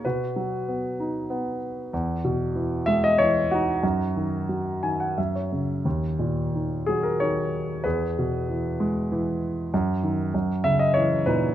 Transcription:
<<
  \new Staff \with { instrumentName = "Grand piano" } { \time 3/4 \key dis \phrygian \tempo 4 = 95 <fis' b'>2~ <fis' b'>8 r8 | r4. e''16 dis''16 cis''8 <dis' fis'>8~ | <dis' fis'>4 r8 gis''16 fis''16 e''16 cis''8. | r4. gis'16 ais'16 cis''4 |
<gis' b'>2~ <gis' b'>8 r8 | r4. e''16 dis''16 cis''8 <dis' b'>8 | }
  \new Staff \with { instrumentName = "Grand piano" } { \clef bass \time 3/4 \key dis \phrygian b,8 fis8 b8 dis'8 b4 | e,8 b,8 e8 gis8 e4 | fis,8 dis8 fis8 dis8 fis,8 cis8 | dis,8 ais,8 dis8 fis8 dis4 |
e,8 b,8 e8 gis8 e4 | fis,8 dis8 fis,8 cis8 e8 ais,8 | }
>>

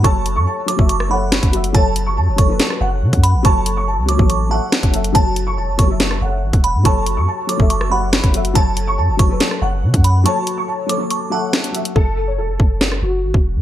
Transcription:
<<
  \new Staff \with { instrumentName = "Synth bell" } { \time 4/4 \key fis \minor \tempo 4 = 141 cis'''4. d'''8 cis'''8 b''4. | a''4. cis'''8 r4. b''8 | cis'''4. d'''8 cis'''8 a''4. | a''4. cis'''8 r4. b''8 |
cis'''4. d'''8 cis'''8 b''4. | a''4. cis'''8 r4. b''8 | cis'''4. d'''8 cis'''8 a''4. | r1 | }
  \new Staff \with { instrumentName = "Grand piano" } { \time 4/4 \key fis \minor a''8. cis'''16 a''4. fis''4. | a''8. cis'''16 a''4. fis''4. | a''8. cis'''16 a''4. fis''4. | a''8. cis'''16 a''4. fis''4. |
a''8. cis'''16 a''4. fis''4. | a''8. cis'''16 a''4. fis''4. | a''8. cis'''16 a''4. fis''4. | a'8. cis''16 a'4. fis'4. | }
  \new Staff \with { instrumentName = "Felt piano" } { \time 4/4 \key fis \minor <fis fis' a' cis''>4~ <fis fis' a' cis''>16 r16 <fis fis' a' cis''>16 <fis fis' a' e''>8 r16 <fis fis' a' cis''>8. r16 <fis fis' a' e''>8 | <fis fis' a' cis''>4~ <fis fis' a' cis''>16 r16 <fis fis' a' cis''>16 <fis fis' a' b'>4. r8. | <fis fis' a' cis''>4~ <fis fis' a' cis''>16 r16 <fis fis' a' cis''>16 <fis fis' a' cis''>8 r16 <fis fis' a' e''>8. r16 <fis fis' a' e''>8 | <fis fis' a' cis''>4~ <fis fis' a' cis''>16 r16 <fis fis' a' cis''>16 <fis fis' a' e''>4. r8. |
<fis fis' a' cis''>4~ <fis fis' a' cis''>16 r16 <fis fis' a' cis''>16 <fis fis' a' e''>8 r16 <fis fis' a' cis''>8. r16 <fis fis' a' e''>8 | <fis fis' a' cis''>4~ <fis fis' a' cis''>16 r16 <fis fis' a' cis''>16 <fis fis' a' b'>4. r8. | <fis fis' a' cis''>4~ <fis fis' a' cis''>16 r16 <fis fis' a' cis''>16 <fis fis' a' cis''>8 r16 <fis fis' a' e''>8. r16 <fis fis' a' e''>8 | r1 | }
  \new Staff \with { instrumentName = "808-style bass" } { \clef bass \time 4/4 \key fis \minor fis,,8. fis,16 r8. fis,,4. fis,,8. | fis,,4 fis,16 fis,,16 fis,,8 r8 fis,,8 cis16 fis,8 a,,16 | fis,,4~ fis,,16 cis,8 a,,4 r8 fis,,8. | fis,,4 e,,16 fis,,16 fis,,4 fis,,8 gis,,16 e,,8 a,16 |
fis,,8. fis,16 r8. fis,,4. fis,,8. | fis,,4 fis,16 fis,,16 fis,,8 r8 fis,,8 cis16 fis,8. | r1 | fis,,4 e,,16 fis,,16 fis,,4 fis,,8 gis,,16 e,,8 a,16 | }
  \new DrumStaff \with { instrumentName = "Drums" } \drummode { \time 4/4 <hh bd>8 hh8 r8 hh16 bd16 hh16 ss8. <hh sn>16 <hh bd>16 hh16 hh16 | <hh bd>8 hh8 r8 <hh bd>8 <hh sn>16 ss8. r16 <hh bd>16 hh8 | <hh bd>8 hh8 r8 hh16 bd16 hh4 <hh sn>16 <hh bd>16 hh16 hh16 | <hh bd>8 hh8 r8 <hh bd>8 <hh sn>16 ss8. r16 <hh bd>16 hh8 |
<hh bd>8 hh8 r8 hh16 bd16 hh16 ss8. <hh sn>16 <hh bd>16 hh16 hh16 | <hh bd>8 hh8 r8 <hh bd>8 <hh sn>16 ss8. r16 <hh bd>16 hh8 | hh8 hh8 r8 hh8 hh4 <hh sn>16 hh16 hh16 hh16 | bd4 r8 bd8 sn16 ss8. r16 bd8. | }
>>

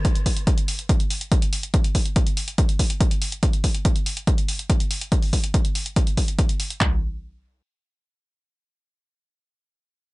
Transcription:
\new DrumStaff \with { instrumentName = "Drums" } \drummode { \time 4/4 \tempo 4 = 142 <hh bd>16 hh16 <hho bd>16 hh16 <hh bd>16 hh16 hho16 hh16 <hh bd>16 hh16 hho16 hh16 <hh bd>16 hh16 hho16 hh16 | <hh bd>16 hh16 <hho bd>16 hh16 <hh bd>16 hh16 hho16 hh16 <hh bd>16 hh16 <hho bd>16 hh16 <hh bd>16 hh16 hho16 hh16 | <hh bd>16 hh16 <hho bd>16 hh16 <hh bd>16 hh16 hho16 hh16 <hh bd>16 hh16 hho16 hh16 <hh bd>16 hh16 hho16 hh16 | <hh bd>16 hho16 <hho bd>16 hh16 <hh bd>16 hh16 hho16 hh16 <hh bd>16 hh16 <hho bd>16 hh16 <hh bd>16 hh16 hho16 hh16 |
<hc bd tomfh>4 r4 r4 r4 | r4 r4 r4 r4 | }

